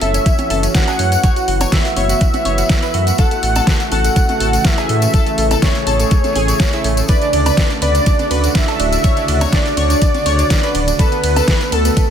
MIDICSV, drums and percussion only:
0, 0, Header, 1, 2, 480
1, 0, Start_track
1, 0, Tempo, 487805
1, 1216, Time_signature, 4, 2, 24, 8
1, 11907, End_track
2, 0, Start_track
2, 0, Title_t, "Drums"
2, 14, Note_on_c, 9, 46, 110
2, 17, Note_on_c, 9, 63, 68
2, 113, Note_off_c, 9, 46, 0
2, 115, Note_off_c, 9, 63, 0
2, 140, Note_on_c, 9, 54, 87
2, 141, Note_on_c, 9, 42, 55
2, 239, Note_off_c, 9, 42, 0
2, 239, Note_off_c, 9, 54, 0
2, 255, Note_on_c, 9, 42, 73
2, 256, Note_on_c, 9, 36, 115
2, 258, Note_on_c, 9, 54, 67
2, 353, Note_off_c, 9, 42, 0
2, 354, Note_off_c, 9, 36, 0
2, 357, Note_off_c, 9, 54, 0
2, 375, Note_on_c, 9, 54, 38
2, 381, Note_on_c, 9, 42, 39
2, 382, Note_on_c, 9, 63, 102
2, 473, Note_off_c, 9, 54, 0
2, 479, Note_off_c, 9, 42, 0
2, 480, Note_off_c, 9, 63, 0
2, 494, Note_on_c, 9, 46, 111
2, 496, Note_on_c, 9, 63, 63
2, 593, Note_off_c, 9, 46, 0
2, 594, Note_off_c, 9, 63, 0
2, 622, Note_on_c, 9, 42, 57
2, 624, Note_on_c, 9, 54, 82
2, 721, Note_off_c, 9, 42, 0
2, 723, Note_off_c, 9, 54, 0
2, 733, Note_on_c, 9, 38, 127
2, 735, Note_on_c, 9, 42, 71
2, 736, Note_on_c, 9, 36, 109
2, 739, Note_on_c, 9, 54, 71
2, 832, Note_off_c, 9, 38, 0
2, 834, Note_off_c, 9, 36, 0
2, 834, Note_off_c, 9, 42, 0
2, 837, Note_off_c, 9, 54, 0
2, 862, Note_on_c, 9, 42, 39
2, 863, Note_on_c, 9, 56, 91
2, 866, Note_on_c, 9, 54, 45
2, 960, Note_off_c, 9, 42, 0
2, 961, Note_off_c, 9, 56, 0
2, 964, Note_off_c, 9, 54, 0
2, 975, Note_on_c, 9, 46, 112
2, 1073, Note_off_c, 9, 46, 0
2, 1101, Note_on_c, 9, 42, 53
2, 1109, Note_on_c, 9, 54, 87
2, 1199, Note_off_c, 9, 42, 0
2, 1207, Note_off_c, 9, 54, 0
2, 1215, Note_on_c, 9, 42, 67
2, 1216, Note_on_c, 9, 36, 127
2, 1216, Note_on_c, 9, 54, 70
2, 1313, Note_off_c, 9, 42, 0
2, 1315, Note_off_c, 9, 36, 0
2, 1315, Note_off_c, 9, 54, 0
2, 1342, Note_on_c, 9, 42, 38
2, 1348, Note_on_c, 9, 54, 46
2, 1440, Note_off_c, 9, 42, 0
2, 1447, Note_off_c, 9, 54, 0
2, 1455, Note_on_c, 9, 46, 111
2, 1554, Note_off_c, 9, 46, 0
2, 1581, Note_on_c, 9, 42, 58
2, 1581, Note_on_c, 9, 54, 93
2, 1584, Note_on_c, 9, 56, 102
2, 1584, Note_on_c, 9, 63, 90
2, 1679, Note_off_c, 9, 42, 0
2, 1679, Note_off_c, 9, 54, 0
2, 1682, Note_off_c, 9, 56, 0
2, 1682, Note_off_c, 9, 63, 0
2, 1694, Note_on_c, 9, 38, 127
2, 1696, Note_on_c, 9, 36, 107
2, 1696, Note_on_c, 9, 42, 69
2, 1701, Note_on_c, 9, 54, 69
2, 1792, Note_off_c, 9, 38, 0
2, 1794, Note_off_c, 9, 36, 0
2, 1794, Note_off_c, 9, 42, 0
2, 1799, Note_off_c, 9, 54, 0
2, 1821, Note_on_c, 9, 46, 64
2, 1823, Note_on_c, 9, 54, 42
2, 1920, Note_off_c, 9, 46, 0
2, 1921, Note_off_c, 9, 54, 0
2, 1933, Note_on_c, 9, 46, 114
2, 1937, Note_on_c, 9, 63, 70
2, 2032, Note_off_c, 9, 46, 0
2, 2035, Note_off_c, 9, 63, 0
2, 2060, Note_on_c, 9, 42, 55
2, 2061, Note_on_c, 9, 54, 84
2, 2159, Note_off_c, 9, 42, 0
2, 2160, Note_off_c, 9, 54, 0
2, 2174, Note_on_c, 9, 42, 69
2, 2176, Note_on_c, 9, 36, 124
2, 2180, Note_on_c, 9, 54, 77
2, 2272, Note_off_c, 9, 42, 0
2, 2274, Note_off_c, 9, 36, 0
2, 2279, Note_off_c, 9, 54, 0
2, 2298, Note_on_c, 9, 54, 42
2, 2301, Note_on_c, 9, 42, 37
2, 2303, Note_on_c, 9, 63, 101
2, 2396, Note_off_c, 9, 54, 0
2, 2400, Note_off_c, 9, 42, 0
2, 2401, Note_off_c, 9, 63, 0
2, 2413, Note_on_c, 9, 46, 112
2, 2417, Note_on_c, 9, 63, 65
2, 2512, Note_off_c, 9, 46, 0
2, 2515, Note_off_c, 9, 63, 0
2, 2538, Note_on_c, 9, 54, 80
2, 2540, Note_on_c, 9, 42, 54
2, 2636, Note_off_c, 9, 54, 0
2, 2638, Note_off_c, 9, 42, 0
2, 2651, Note_on_c, 9, 38, 125
2, 2653, Note_on_c, 9, 42, 71
2, 2656, Note_on_c, 9, 36, 112
2, 2659, Note_on_c, 9, 54, 67
2, 2750, Note_off_c, 9, 38, 0
2, 2752, Note_off_c, 9, 42, 0
2, 2754, Note_off_c, 9, 36, 0
2, 2757, Note_off_c, 9, 54, 0
2, 2780, Note_on_c, 9, 42, 40
2, 2786, Note_on_c, 9, 54, 47
2, 2878, Note_off_c, 9, 42, 0
2, 2885, Note_off_c, 9, 54, 0
2, 2893, Note_on_c, 9, 46, 112
2, 2991, Note_off_c, 9, 46, 0
2, 3020, Note_on_c, 9, 42, 53
2, 3027, Note_on_c, 9, 54, 84
2, 3118, Note_off_c, 9, 42, 0
2, 3126, Note_off_c, 9, 54, 0
2, 3130, Note_on_c, 9, 54, 76
2, 3133, Note_on_c, 9, 42, 64
2, 3136, Note_on_c, 9, 36, 126
2, 3228, Note_off_c, 9, 54, 0
2, 3232, Note_off_c, 9, 42, 0
2, 3234, Note_off_c, 9, 36, 0
2, 3259, Note_on_c, 9, 42, 39
2, 3261, Note_on_c, 9, 54, 38
2, 3358, Note_off_c, 9, 42, 0
2, 3360, Note_off_c, 9, 54, 0
2, 3374, Note_on_c, 9, 46, 108
2, 3473, Note_off_c, 9, 46, 0
2, 3498, Note_on_c, 9, 54, 87
2, 3501, Note_on_c, 9, 42, 52
2, 3504, Note_on_c, 9, 56, 101
2, 3504, Note_on_c, 9, 63, 88
2, 3596, Note_off_c, 9, 54, 0
2, 3600, Note_off_c, 9, 42, 0
2, 3602, Note_off_c, 9, 56, 0
2, 3602, Note_off_c, 9, 63, 0
2, 3611, Note_on_c, 9, 38, 127
2, 3613, Note_on_c, 9, 42, 71
2, 3616, Note_on_c, 9, 36, 114
2, 3620, Note_on_c, 9, 54, 65
2, 3710, Note_off_c, 9, 38, 0
2, 3712, Note_off_c, 9, 42, 0
2, 3714, Note_off_c, 9, 36, 0
2, 3718, Note_off_c, 9, 54, 0
2, 3739, Note_on_c, 9, 54, 46
2, 3740, Note_on_c, 9, 42, 36
2, 3837, Note_off_c, 9, 54, 0
2, 3839, Note_off_c, 9, 42, 0
2, 3853, Note_on_c, 9, 46, 118
2, 3856, Note_on_c, 9, 63, 71
2, 3952, Note_off_c, 9, 46, 0
2, 3954, Note_off_c, 9, 63, 0
2, 3980, Note_on_c, 9, 42, 53
2, 3980, Note_on_c, 9, 54, 84
2, 4078, Note_off_c, 9, 54, 0
2, 4079, Note_off_c, 9, 42, 0
2, 4094, Note_on_c, 9, 42, 66
2, 4095, Note_on_c, 9, 54, 75
2, 4096, Note_on_c, 9, 36, 127
2, 4193, Note_off_c, 9, 42, 0
2, 4193, Note_off_c, 9, 54, 0
2, 4194, Note_off_c, 9, 36, 0
2, 4221, Note_on_c, 9, 42, 37
2, 4223, Note_on_c, 9, 63, 98
2, 4225, Note_on_c, 9, 54, 40
2, 4319, Note_off_c, 9, 42, 0
2, 4322, Note_off_c, 9, 63, 0
2, 4323, Note_off_c, 9, 54, 0
2, 4334, Note_on_c, 9, 46, 112
2, 4336, Note_on_c, 9, 63, 66
2, 4432, Note_off_c, 9, 46, 0
2, 4435, Note_off_c, 9, 63, 0
2, 4461, Note_on_c, 9, 42, 54
2, 4468, Note_on_c, 9, 54, 90
2, 4559, Note_off_c, 9, 42, 0
2, 4567, Note_off_c, 9, 54, 0
2, 4571, Note_on_c, 9, 38, 123
2, 4573, Note_on_c, 9, 42, 65
2, 4576, Note_on_c, 9, 36, 108
2, 4578, Note_on_c, 9, 54, 65
2, 4670, Note_off_c, 9, 38, 0
2, 4672, Note_off_c, 9, 42, 0
2, 4674, Note_off_c, 9, 36, 0
2, 4677, Note_off_c, 9, 54, 0
2, 4700, Note_on_c, 9, 42, 37
2, 4702, Note_on_c, 9, 54, 41
2, 4703, Note_on_c, 9, 56, 98
2, 4799, Note_off_c, 9, 42, 0
2, 4800, Note_off_c, 9, 54, 0
2, 4802, Note_off_c, 9, 56, 0
2, 4814, Note_on_c, 9, 46, 118
2, 4912, Note_off_c, 9, 46, 0
2, 4938, Note_on_c, 9, 54, 89
2, 4941, Note_on_c, 9, 42, 54
2, 5037, Note_off_c, 9, 54, 0
2, 5039, Note_off_c, 9, 42, 0
2, 5054, Note_on_c, 9, 42, 62
2, 5056, Note_on_c, 9, 36, 119
2, 5056, Note_on_c, 9, 54, 66
2, 5152, Note_off_c, 9, 42, 0
2, 5154, Note_off_c, 9, 36, 0
2, 5154, Note_off_c, 9, 54, 0
2, 5180, Note_on_c, 9, 42, 36
2, 5185, Note_on_c, 9, 54, 43
2, 5279, Note_off_c, 9, 42, 0
2, 5283, Note_off_c, 9, 54, 0
2, 5293, Note_on_c, 9, 46, 111
2, 5391, Note_off_c, 9, 46, 0
2, 5420, Note_on_c, 9, 42, 51
2, 5420, Note_on_c, 9, 54, 78
2, 5422, Note_on_c, 9, 56, 100
2, 5422, Note_on_c, 9, 63, 84
2, 5518, Note_off_c, 9, 54, 0
2, 5519, Note_off_c, 9, 42, 0
2, 5521, Note_off_c, 9, 56, 0
2, 5521, Note_off_c, 9, 63, 0
2, 5532, Note_on_c, 9, 38, 122
2, 5534, Note_on_c, 9, 42, 67
2, 5536, Note_on_c, 9, 36, 113
2, 5536, Note_on_c, 9, 54, 74
2, 5631, Note_off_c, 9, 38, 0
2, 5633, Note_off_c, 9, 42, 0
2, 5634, Note_off_c, 9, 36, 0
2, 5634, Note_off_c, 9, 54, 0
2, 5657, Note_on_c, 9, 54, 40
2, 5660, Note_on_c, 9, 46, 67
2, 5755, Note_off_c, 9, 54, 0
2, 5759, Note_off_c, 9, 46, 0
2, 5774, Note_on_c, 9, 46, 116
2, 5777, Note_on_c, 9, 63, 63
2, 5872, Note_off_c, 9, 46, 0
2, 5875, Note_off_c, 9, 63, 0
2, 5900, Note_on_c, 9, 42, 51
2, 5903, Note_on_c, 9, 54, 83
2, 5998, Note_off_c, 9, 42, 0
2, 6001, Note_off_c, 9, 54, 0
2, 6012, Note_on_c, 9, 54, 67
2, 6013, Note_on_c, 9, 42, 65
2, 6016, Note_on_c, 9, 36, 126
2, 6110, Note_off_c, 9, 54, 0
2, 6112, Note_off_c, 9, 42, 0
2, 6114, Note_off_c, 9, 36, 0
2, 6141, Note_on_c, 9, 42, 37
2, 6143, Note_on_c, 9, 63, 95
2, 6146, Note_on_c, 9, 54, 40
2, 6239, Note_off_c, 9, 42, 0
2, 6241, Note_off_c, 9, 63, 0
2, 6245, Note_off_c, 9, 54, 0
2, 6253, Note_on_c, 9, 46, 114
2, 6256, Note_on_c, 9, 63, 63
2, 6352, Note_off_c, 9, 46, 0
2, 6354, Note_off_c, 9, 63, 0
2, 6379, Note_on_c, 9, 42, 51
2, 6385, Note_on_c, 9, 54, 86
2, 6478, Note_off_c, 9, 42, 0
2, 6483, Note_off_c, 9, 54, 0
2, 6491, Note_on_c, 9, 38, 118
2, 6493, Note_on_c, 9, 42, 66
2, 6496, Note_on_c, 9, 36, 113
2, 6501, Note_on_c, 9, 54, 70
2, 6590, Note_off_c, 9, 38, 0
2, 6592, Note_off_c, 9, 42, 0
2, 6594, Note_off_c, 9, 36, 0
2, 6600, Note_off_c, 9, 54, 0
2, 6621, Note_on_c, 9, 42, 38
2, 6623, Note_on_c, 9, 54, 41
2, 6719, Note_off_c, 9, 42, 0
2, 6721, Note_off_c, 9, 54, 0
2, 6734, Note_on_c, 9, 46, 112
2, 6833, Note_off_c, 9, 46, 0
2, 6860, Note_on_c, 9, 42, 50
2, 6862, Note_on_c, 9, 54, 91
2, 6959, Note_off_c, 9, 42, 0
2, 6960, Note_off_c, 9, 54, 0
2, 6969, Note_on_c, 9, 54, 71
2, 6974, Note_on_c, 9, 42, 59
2, 6974, Note_on_c, 9, 51, 57
2, 6976, Note_on_c, 9, 36, 123
2, 7067, Note_off_c, 9, 54, 0
2, 7072, Note_off_c, 9, 42, 0
2, 7072, Note_off_c, 9, 51, 0
2, 7074, Note_off_c, 9, 36, 0
2, 7100, Note_on_c, 9, 42, 35
2, 7107, Note_on_c, 9, 54, 43
2, 7198, Note_off_c, 9, 42, 0
2, 7205, Note_off_c, 9, 54, 0
2, 7214, Note_on_c, 9, 46, 107
2, 7214, Note_on_c, 9, 51, 80
2, 7312, Note_off_c, 9, 46, 0
2, 7312, Note_off_c, 9, 51, 0
2, 7341, Note_on_c, 9, 42, 54
2, 7342, Note_on_c, 9, 54, 78
2, 7342, Note_on_c, 9, 56, 97
2, 7342, Note_on_c, 9, 63, 84
2, 7439, Note_off_c, 9, 42, 0
2, 7440, Note_off_c, 9, 54, 0
2, 7441, Note_off_c, 9, 56, 0
2, 7441, Note_off_c, 9, 63, 0
2, 7452, Note_on_c, 9, 38, 115
2, 7454, Note_on_c, 9, 42, 65
2, 7454, Note_on_c, 9, 51, 61
2, 7456, Note_on_c, 9, 36, 110
2, 7460, Note_on_c, 9, 54, 61
2, 7550, Note_off_c, 9, 38, 0
2, 7552, Note_off_c, 9, 42, 0
2, 7552, Note_off_c, 9, 51, 0
2, 7555, Note_off_c, 9, 36, 0
2, 7558, Note_off_c, 9, 54, 0
2, 7579, Note_on_c, 9, 54, 36
2, 7580, Note_on_c, 9, 42, 36
2, 7677, Note_off_c, 9, 54, 0
2, 7679, Note_off_c, 9, 42, 0
2, 7694, Note_on_c, 9, 46, 113
2, 7694, Note_on_c, 9, 51, 85
2, 7695, Note_on_c, 9, 63, 65
2, 7792, Note_off_c, 9, 46, 0
2, 7792, Note_off_c, 9, 51, 0
2, 7794, Note_off_c, 9, 63, 0
2, 7821, Note_on_c, 9, 42, 53
2, 7823, Note_on_c, 9, 54, 78
2, 7919, Note_off_c, 9, 42, 0
2, 7921, Note_off_c, 9, 54, 0
2, 7933, Note_on_c, 9, 54, 69
2, 7934, Note_on_c, 9, 42, 65
2, 7934, Note_on_c, 9, 51, 59
2, 7936, Note_on_c, 9, 36, 120
2, 8032, Note_off_c, 9, 42, 0
2, 8032, Note_off_c, 9, 51, 0
2, 8032, Note_off_c, 9, 54, 0
2, 8035, Note_off_c, 9, 36, 0
2, 8061, Note_on_c, 9, 42, 36
2, 8062, Note_on_c, 9, 63, 93
2, 8063, Note_on_c, 9, 54, 36
2, 8160, Note_off_c, 9, 42, 0
2, 8161, Note_off_c, 9, 63, 0
2, 8162, Note_off_c, 9, 54, 0
2, 8175, Note_on_c, 9, 46, 103
2, 8175, Note_on_c, 9, 51, 83
2, 8176, Note_on_c, 9, 63, 59
2, 8273, Note_off_c, 9, 46, 0
2, 8273, Note_off_c, 9, 51, 0
2, 8275, Note_off_c, 9, 63, 0
2, 8302, Note_on_c, 9, 42, 50
2, 8306, Note_on_c, 9, 54, 79
2, 8400, Note_off_c, 9, 42, 0
2, 8404, Note_off_c, 9, 54, 0
2, 8413, Note_on_c, 9, 38, 114
2, 8414, Note_on_c, 9, 54, 70
2, 8415, Note_on_c, 9, 42, 68
2, 8415, Note_on_c, 9, 51, 60
2, 8417, Note_on_c, 9, 36, 110
2, 8511, Note_off_c, 9, 38, 0
2, 8512, Note_off_c, 9, 54, 0
2, 8513, Note_off_c, 9, 42, 0
2, 8513, Note_off_c, 9, 51, 0
2, 8515, Note_off_c, 9, 36, 0
2, 8542, Note_on_c, 9, 42, 37
2, 8543, Note_on_c, 9, 56, 93
2, 8548, Note_on_c, 9, 54, 38
2, 8640, Note_off_c, 9, 42, 0
2, 8642, Note_off_c, 9, 56, 0
2, 8646, Note_off_c, 9, 54, 0
2, 8656, Note_on_c, 9, 46, 113
2, 8656, Note_on_c, 9, 51, 80
2, 8754, Note_off_c, 9, 46, 0
2, 8754, Note_off_c, 9, 51, 0
2, 8782, Note_on_c, 9, 42, 52
2, 8782, Note_on_c, 9, 54, 75
2, 8880, Note_off_c, 9, 54, 0
2, 8881, Note_off_c, 9, 42, 0
2, 8894, Note_on_c, 9, 54, 65
2, 8895, Note_on_c, 9, 42, 66
2, 8895, Note_on_c, 9, 51, 56
2, 8897, Note_on_c, 9, 36, 115
2, 8992, Note_off_c, 9, 54, 0
2, 8994, Note_off_c, 9, 42, 0
2, 8994, Note_off_c, 9, 51, 0
2, 8995, Note_off_c, 9, 36, 0
2, 9018, Note_on_c, 9, 54, 38
2, 9022, Note_on_c, 9, 42, 38
2, 9117, Note_off_c, 9, 54, 0
2, 9121, Note_off_c, 9, 42, 0
2, 9135, Note_on_c, 9, 46, 104
2, 9135, Note_on_c, 9, 51, 83
2, 9233, Note_off_c, 9, 46, 0
2, 9233, Note_off_c, 9, 51, 0
2, 9261, Note_on_c, 9, 54, 72
2, 9262, Note_on_c, 9, 42, 52
2, 9263, Note_on_c, 9, 56, 93
2, 9263, Note_on_c, 9, 63, 82
2, 9359, Note_off_c, 9, 54, 0
2, 9360, Note_off_c, 9, 42, 0
2, 9362, Note_off_c, 9, 56, 0
2, 9362, Note_off_c, 9, 63, 0
2, 9373, Note_on_c, 9, 38, 117
2, 9374, Note_on_c, 9, 54, 58
2, 9375, Note_on_c, 9, 42, 69
2, 9375, Note_on_c, 9, 51, 59
2, 9377, Note_on_c, 9, 36, 106
2, 9471, Note_off_c, 9, 38, 0
2, 9472, Note_off_c, 9, 54, 0
2, 9473, Note_off_c, 9, 42, 0
2, 9473, Note_off_c, 9, 51, 0
2, 9475, Note_off_c, 9, 36, 0
2, 9502, Note_on_c, 9, 46, 60
2, 9504, Note_on_c, 9, 54, 35
2, 9600, Note_off_c, 9, 46, 0
2, 9602, Note_off_c, 9, 54, 0
2, 9615, Note_on_c, 9, 46, 110
2, 9615, Note_on_c, 9, 51, 87
2, 9616, Note_on_c, 9, 63, 62
2, 9713, Note_off_c, 9, 46, 0
2, 9713, Note_off_c, 9, 51, 0
2, 9715, Note_off_c, 9, 63, 0
2, 9742, Note_on_c, 9, 42, 53
2, 9746, Note_on_c, 9, 54, 80
2, 9840, Note_off_c, 9, 42, 0
2, 9844, Note_off_c, 9, 54, 0
2, 9854, Note_on_c, 9, 54, 67
2, 9856, Note_on_c, 9, 42, 67
2, 9856, Note_on_c, 9, 51, 57
2, 9857, Note_on_c, 9, 36, 112
2, 9952, Note_off_c, 9, 54, 0
2, 9954, Note_off_c, 9, 42, 0
2, 9954, Note_off_c, 9, 51, 0
2, 9956, Note_off_c, 9, 36, 0
2, 9982, Note_on_c, 9, 42, 37
2, 9983, Note_on_c, 9, 63, 93
2, 9993, Note_on_c, 9, 54, 37
2, 10081, Note_off_c, 9, 42, 0
2, 10081, Note_off_c, 9, 63, 0
2, 10091, Note_off_c, 9, 54, 0
2, 10095, Note_on_c, 9, 46, 105
2, 10095, Note_on_c, 9, 51, 84
2, 10097, Note_on_c, 9, 63, 61
2, 10193, Note_off_c, 9, 46, 0
2, 10193, Note_off_c, 9, 51, 0
2, 10196, Note_off_c, 9, 63, 0
2, 10220, Note_on_c, 9, 54, 70
2, 10223, Note_on_c, 9, 42, 53
2, 10319, Note_off_c, 9, 54, 0
2, 10321, Note_off_c, 9, 42, 0
2, 10335, Note_on_c, 9, 38, 116
2, 10337, Note_on_c, 9, 36, 103
2, 10337, Note_on_c, 9, 42, 68
2, 10337, Note_on_c, 9, 51, 60
2, 10340, Note_on_c, 9, 54, 71
2, 10433, Note_off_c, 9, 38, 0
2, 10435, Note_off_c, 9, 42, 0
2, 10435, Note_off_c, 9, 51, 0
2, 10436, Note_off_c, 9, 36, 0
2, 10439, Note_off_c, 9, 54, 0
2, 10461, Note_on_c, 9, 54, 39
2, 10463, Note_on_c, 9, 42, 36
2, 10559, Note_off_c, 9, 54, 0
2, 10562, Note_off_c, 9, 42, 0
2, 10575, Note_on_c, 9, 46, 107
2, 10575, Note_on_c, 9, 51, 83
2, 10674, Note_off_c, 9, 46, 0
2, 10674, Note_off_c, 9, 51, 0
2, 10703, Note_on_c, 9, 42, 54
2, 10704, Note_on_c, 9, 54, 78
2, 10802, Note_off_c, 9, 42, 0
2, 10802, Note_off_c, 9, 54, 0
2, 10817, Note_on_c, 9, 36, 116
2, 10817, Note_on_c, 9, 42, 69
2, 10817, Note_on_c, 9, 51, 55
2, 10819, Note_on_c, 9, 54, 65
2, 10916, Note_off_c, 9, 36, 0
2, 10916, Note_off_c, 9, 42, 0
2, 10916, Note_off_c, 9, 51, 0
2, 10917, Note_off_c, 9, 54, 0
2, 10943, Note_on_c, 9, 42, 41
2, 10944, Note_on_c, 9, 54, 40
2, 11041, Note_off_c, 9, 42, 0
2, 11042, Note_off_c, 9, 54, 0
2, 11056, Note_on_c, 9, 46, 102
2, 11056, Note_on_c, 9, 51, 84
2, 11154, Note_off_c, 9, 46, 0
2, 11154, Note_off_c, 9, 51, 0
2, 11182, Note_on_c, 9, 42, 56
2, 11182, Note_on_c, 9, 56, 92
2, 11182, Note_on_c, 9, 63, 86
2, 11187, Note_on_c, 9, 54, 84
2, 11281, Note_off_c, 9, 42, 0
2, 11281, Note_off_c, 9, 56, 0
2, 11281, Note_off_c, 9, 63, 0
2, 11285, Note_off_c, 9, 54, 0
2, 11293, Note_on_c, 9, 38, 122
2, 11295, Note_on_c, 9, 42, 71
2, 11295, Note_on_c, 9, 51, 65
2, 11297, Note_on_c, 9, 36, 102
2, 11392, Note_off_c, 9, 38, 0
2, 11394, Note_off_c, 9, 42, 0
2, 11394, Note_off_c, 9, 51, 0
2, 11395, Note_off_c, 9, 36, 0
2, 11422, Note_on_c, 9, 42, 37
2, 11424, Note_on_c, 9, 54, 36
2, 11520, Note_off_c, 9, 42, 0
2, 11522, Note_off_c, 9, 54, 0
2, 11535, Note_on_c, 9, 46, 105
2, 11535, Note_on_c, 9, 51, 84
2, 11537, Note_on_c, 9, 63, 63
2, 11633, Note_off_c, 9, 46, 0
2, 11633, Note_off_c, 9, 51, 0
2, 11636, Note_off_c, 9, 63, 0
2, 11660, Note_on_c, 9, 54, 85
2, 11662, Note_on_c, 9, 42, 55
2, 11759, Note_off_c, 9, 54, 0
2, 11760, Note_off_c, 9, 42, 0
2, 11775, Note_on_c, 9, 54, 62
2, 11776, Note_on_c, 9, 36, 114
2, 11776, Note_on_c, 9, 42, 71
2, 11776, Note_on_c, 9, 51, 61
2, 11874, Note_off_c, 9, 54, 0
2, 11875, Note_off_c, 9, 36, 0
2, 11875, Note_off_c, 9, 42, 0
2, 11875, Note_off_c, 9, 51, 0
2, 11907, End_track
0, 0, End_of_file